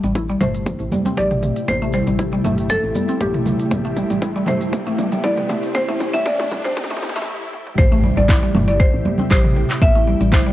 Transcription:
Already playing: ambient pad C3 A3 E4 G4, riser
0.04 fm bass A1, synth pluck G3, closed hi-hat, cabasa
0.15 synth pluck E4, kick, closed hi-hat, mid tom, cabasa
0.28 synth pluck G3, cabasa
0.41 fm bass G1, synth pluck A3, marimba C5, mid tom, low conga, cabasa
0.55 closed hi-hat, cabasa
0.66 kick, closed hi-hat, mid tom, high conga, cabasa
0.79 fm bass A1, cabasa
0.91 synth pluck G3, high conga, low conga, cabasa
1.05 synth pluck C4, closed hi-hat, low conga, cabasa
1.17 fm bass A1, synth pluck G4, marimba D5, kick, closed hi-hat, mid tom, low conga, cabasa
1.31 mid tom, cabasa
1.43 mid tom, cabasa
1.56 closed hi-hat, cabasa
1.68 fm bass A1, marimba C5, kick, closed hi-hat, mid tom, high conga, cabasa
1.82 synth pluck A3, cabasa
1.93 synth pluck G3, marimba C5, cabasa
2.07 fm bass A1, synth pluck G3, closed hi-hat, cabasa
2.19 synth pluck E4, kick, closed hi-hat, mid tom, cabasa
2.32 synth pluck G3, cabasa
2.44 fm bass G1, synth pluck A3, mid tom, low conga, cabasa
2.58 closed hi-hat, cabasa
2.69 marimba A4, kick, closed hi-hat, mid tom, high conga, cabasa
2.83 fm bass A1, cabasa
2.95 synth pluck G3, high conga, cabasa
3.08 synth pluck C4, closed hi-hat, cabasa
3.21 fm bass A1, synth pluck G4, kick, closed hi-hat, mid tom, high conga, cabasa
3.34 mid tom, cabasa
3.46 mid tom, low conga, cabasa
3.59 closed hi-hat, cabasa
3.71 fm bass A1, kick, closed hi-hat, mid tom, high conga, cabasa
3.85 synth pluck A3, cabasa
3.97 synth pluck G3, mid tom, cabasa
4.10 fm bass A1, synth pluck G3, closed hi-hat, cabasa
4.22 synth pluck E4, kick, closed hi-hat, mid tom, cabasa
4.36 synth pluck G3, cabasa
4.46 fm bass G1, synth pluck A3, marimba C5, mid tom, low conga, cabasa
4.61 closed hi-hat, cabasa
4.73 kick, closed hi-hat, mid tom, high conga, cabasa
4.87 fm bass A1, synth pluck A3, cabasa
4.99 synth pluck G3, mid tom, high conga, low conga, cabasa
5.12 synth pluck G3, closed hi-hat, low conga, cabasa
5.24 fm bass A1, synth pluck E4, marimba D5, kick, closed hi-hat, mid tom, low conga, cabasa
5.37 synth pluck G3, mid tom, cabasa
5.49 synth pluck A3, mid tom, cabasa
5.63 closed hi-hat, cabasa
5.75 fm bass A1, marimba C5, kick, closed hi-hat, mid tom, high conga, cabasa
5.88 synth pluck A3, mid tom, cabasa
6.00 synth pluck G3, mid tom, cabasa
6.14 fm bass A1, synth pluck G3, marimba E5, closed hi-hat, mid tom, cabasa
6.26 marimba D5, kick, closed hi-hat, mid tom, cabasa
6.39 synth pluck A3, mid tom, cabasa
6.51 fm bass G1, synth pluck G3, mid tom, low conga, cabasa
6.64 synth pluck G3, marimba C5, closed hi-hat, mid tom, cabasa
6.76 kick, closed hi-hat, mid tom, high conga, cabasa
6.84 mid tom
6.90 fm bass A1, synth pluck A3, mid tom, cabasa
6.96 mid tom
7.01 mid tom, high conga, cabasa
7.09 mid tom
7.16 synth pluck A3, closed hi-hat, mid tom, cabasa
7.22 mid tom
7.53 high tom
7.67 mid tom
7.78 fm bass A1, ambient pad C3 A3 E4 G4, marimba C5, kick, closed hi-hat, impact, high conga
7.92 synth pluck A3
8.04 synth pluck G3
8.17 fm bass A1, synth pluck G3, marimba D5, closed hi-hat
8.28 synth pluck E4, kick, clap, closed hi-hat, high conga
8.43 synth pluck G3
8.55 fm bass G1, synth pluck A3, mid tom, low conga
8.68 marimba D5, closed hi-hat
8.80 marimba C5, kick, closed hi-hat, high conga
8.94 fm bass A1
9.05 synth pluck G3, high conga, low conga
9.18 synth pluck C4, closed hi-hat, low conga
9.31 fm bass A1, synth pluck G4, marimba C5, kick, clap, closed hi-hat, low conga
9.44 mid tom
9.56 mid tom
9.70 clap, closed hi-hat
9.81 fm bass A1, marimba E5, kick, closed hi-hat, high conga
9.95 synth pluck A3
10.07 synth pluck G3
10.21 fm bass A1, synth pluck G3, closed hi-hat
10.32 synth pluck E4, marimba C5, kick, clap, closed hi-hat, high conga
10.46 synth pluck G3

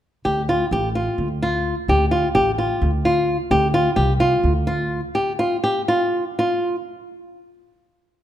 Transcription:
0.25 upright bass D2, nylon-string guitar G4
0.49 nylon-string guitar F4
0.71 upright bass A1, nylon-string guitar G4
0.95 nylon-string guitar F4
1.18 upright bass D2
1.43 nylon-string guitar F4
1.88 upright bass D2, nylon-string guitar G4
2.11 nylon-string guitar F4
2.35 upright bass A1, nylon-string guitar G4
2.58 nylon-string guitar F4
2.81 upright bass D2
3.05 nylon-string guitar F4
3.51 upright bass D2, nylon-string guitar G4
3.74 nylon-string guitar F4
3.96 upright bass C2, nylon-string guitar G4
4.20 nylon-string guitar F4
4.44 upright bass D2
4.67 nylon-string guitar F4
5.15 nylon-string guitar G4
5.39 nylon-string guitar F4
5.64 nylon-string guitar G4
5.88 nylon-string guitar F4
6.39 nylon-string guitar F4

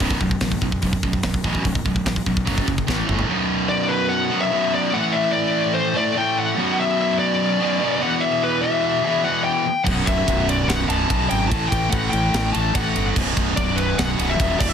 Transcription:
0.00 fingered electric bass B0, distorted electric guitar B1 F#2 B2, kick
0.11 kick
0.20 fingered electric bass B0, distorted electric guitar B1 F#2, kick
0.31 kick
0.41 fingered electric bass A1, distorted electric guitar B1 F#2, kick, snare, open hi-hat
0.52 kick
0.61 distorted electric guitar B1 F#2, fingered electric bass B1, kick
0.72 kick
0.82 fingered electric bass E1, distorted electric guitar B1 F#2, kick, open hi-hat
0.93 kick
1.03 fingered electric bass B0, distorted electric guitar B1 F#2, kick
1.13 kick
1.23 fingered electric bass B0, distorted electric guitar B1 F#2, kick, snare, open hi-hat
1.34 kick
1.44 fingered electric bass A1, distorted electric guitar B1 F#2 B2, kick
1.55 kick
1.65 fingered electric bass B0, distorted electric guitar B1 F#2, kick, open hi-hat
1.75 kick
1.85 fingered electric bass B0, distorted electric guitar B1 F#2, kick
1.96 kick
2.06 fingered electric bass A1, distorted electric guitar B1 F#2, kick, snare, open hi-hat
2.16 kick
2.26 fingered electric bass B1, distorted electric guitar B1 F#2, kick
2.37 kick
2.45 fingered electric bass F#1, distorted electric guitar F#2 C#3 F#3, kick, open hi-hat
2.58 kick
2.67 fingered electric bass F#1, distorted electric guitar F#2 C#3, kick
2.78 kick
2.87 fingered electric bass A1, distorted electric guitar A2 E3 A3, kick, snare
3.07 fingered electric bass G1, distorted electric guitar A2 E3 A3, mid tom
3.19 floor tom
3.27 distorted electric guitar B1 F#2 B2
3.69 lead electric guitar D5
3.88 lead electric guitar B4
4.09 lead electric guitar F#5
4.29 distorted electric guitar B1 F#2 B2
4.41 lead electric guitar E5
4.50 distorted electric guitar B1 F#2 B2
4.75 lead electric guitar D5
4.91 distorted electric guitar A2 E3 A3, lead electric guitar F#5
5.12 lead electric guitar E5
5.32 lead electric guitar D5
5.74 lead electric guitar C5
5.94 distorted electric guitar A2 E3 A3, lead electric guitar D5
6.14 distorted electric guitar A2 E3 A3, lead electric guitar G5
6.39 lead electric guitar F#5
6.55 distorted electric guitar B1 F#2 B2
6.80 lead electric guitar E5
7.02 lead electric guitar E5
7.19 lead electric guitar D5
7.59 distorted electric guitar B1 F#2 B2
7.80 distorted electric guitar B1 F#2 B2
7.99 distorted electric guitar E2 B2 E3, lead electric guitar F#5
8.21 lead electric guitar E5
8.44 lead electric guitar B4
8.61 lead electric guitar E5
9.02 distorted electric guitar E2 B2 E3
9.22 distorted electric guitar E2 B2 E3, lead electric guitar F#5
9.44 lead electric guitar G5
9.84 fingered electric bass B0, distorted electric guitar B1 F#2 B2, lead electric guitar F#5, kick, crash
10.06 fingered electric bass B0, lead electric guitar E5, kick, ride
10.28 fingered electric bass B0, kick, ride
10.49 lead electric guitar D5, ride
10.67 fingered electric bass B0, lead electric guitar F#5, snare, ride
10.88 fingered electric bass B0, distorted electric guitar B1 F#2 B2, lead electric guitar A5, ride
11.07 distorted electric guitar B1 F#2 B2, fingered electric bass B1, kick, ride
11.29 fingered electric bass G#1, lead electric guitar G5, ride
11.48 fingered electric bass A1, distorted electric guitar A2 E3, lead electric guitar A5, kick, ride
11.53 distorted electric guitar A3
11.69 fingered electric bass A1, lead electric guitar G5, kick, ride
11.90 fingered electric bass A1, lead electric guitar F#5, kick, ride
12.10 fingered electric bass A1, lead electric guitar G5, ride
12.34 fingered electric bass A1, snare, ride
12.53 fingered electric bass A1, distorted electric guitar A2 E3 A3, lead electric guitar A5, ride
12.72 distorted electric guitar A2 E3 A3, lead electric guitar F#5, kick, ride
12.96 fingered electric bass G1, ride
13.14 fingered electric bass B0, distorted electric guitar B1 F#2 B2, kick, crash
13.37 fingered electric bass B0, kick, ride
13.57 fingered electric bass B0, lead electric guitar D5, kick, ride
13.76 lead electric guitar B4, ride
13.98 fingered electric bass B0, lead electric guitar F#5, snare, ride
14.18 fingered electric bass B0, distorted electric guitar B1 F#2 B2, ride
14.30 lead electric guitar E5
14.38 fingered electric bass D#1, distorted electric guitar B1 F#2 B2, kick, ride
14.57 fingered electric bass E1, distorted electric guitar E2 B2 E3, lead electric guitar D5, kick, crash
14.69 lead electric guitar E5

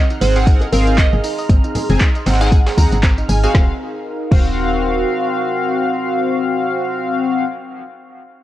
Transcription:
Already playing: ambient pad D#4 G#4 A#4 D#5 A#5, string machine F6
0.10 synth arpeggio sound D#4, closed hi-hat, tambourine
0.21 fm bass G#1, analog polysynth C4 G#4 F#5, synth arpeggio sound G#4, synth pluck C5, closed hi-hat, open hi-hat, tambourine
0.36 analog polysynth C4 G#4 F#5, synth arpeggio sound G#4, snare, closed hi-hat, tambourine
0.47 synth arpeggio sound D#4, kick, closed hi-hat, tambourine
0.61 synth arpeggio sound D#5, closed hi-hat, tambourine, high bongo
0.72 fm bass G#1, analog polysynth C4 G#4 F5, synth arpeggio sound C4, synth pluck A#4, closed hi-hat, open hi-hat, tambourine
0.82 ambient pad C6
0.87 synth arpeggio sound D#4, closed hi-hat, tambourine
0.98 fm bass F#1, synth arpeggio sound G#4, synth pluck D#5, kick, snare, clap, closed hi-hat, tambourine
1.13 fm bass G#1, synth arpeggio sound G#4, tambourine
1.24 synth arpeggio sound D#4, closed hi-hat, open hi-hat, tambourine
1.38 synth arpeggio sound D#5, closed hi-hat, open hi-hat, tambourine
1.49 fm bass G#1, synth arpeggio sound C4, kick, closed hi-hat, tambourine
1.64 synth arpeggio sound D#4, closed hi-hat, tambourine
1.75 synth arpeggio sound G#4, closed hi-hat, open hi-hat, tambourine, low conga
1.90 fm bass F#1, analog polysynth C4 G#4 G#5, synth arpeggio sound G#4, closed hi-hat, tambourine, high conga
2.01 synth arpeggio sound D#4, kick, snare, clap, closed hi-hat, tambourine
2.15 synth arpeggio sound D#5, closed hi-hat, tambourine
2.26 fm bass G#1, analog polysynth C4 G#4 F#5, synth arpeggio sound C4, snare, closed hi-hat, open hi-hat, tambourine
2.34 snare, closed hi-hat
2.41 analog polysynth C4 G#4 G#5, synth arpeggio sound D#4, synth pluck F#5, snare, closed hi-hat, tambourine
2.46 snare, closed hi-hat
2.52 synth arpeggio sound G#4, kick, closed hi-hat, tambourine
2.67 synth arpeggio sound G#4, snare, closed hi-hat, open hi-hat, tambourine
2.78 fm bass D#2, analog polysynth C4 G#4 F#5, synth arpeggio sound D#4, synth pluck A#5, kick, open hi-hat, tambourine
2.92 fm bass G#1, synth arpeggio sound D#5, closed hi-hat, tambourine
3.03 synth arpeggio sound C4, kick, snare, clap, closed hi-hat, tambourine
3.18 synth arpeggio sound D#4, closed hi-hat, tambourine
3.29 fm bass G#1, synth arpeggio sound G#4, synth pluck G#5, closed hi-hat, open hi-hat, tambourine
3.43 analog polysynth C4 F#4 F5, synth arpeggio sound G#4, synth pluck G#5, closed hi-hat, tambourine
3.54 fm bass D#1, analog polysynth C4 F#4 F5, synth arpeggio sound C4, ambient pad D#4, kick, snare
3.63 ambient pad A#4
3.71 ambient pad F5
3.78 ambient pad F#4
4.31 fm bass D#1, analog polysynth C4 F#4 F5, synth arpeggio sound C4, kick, crash

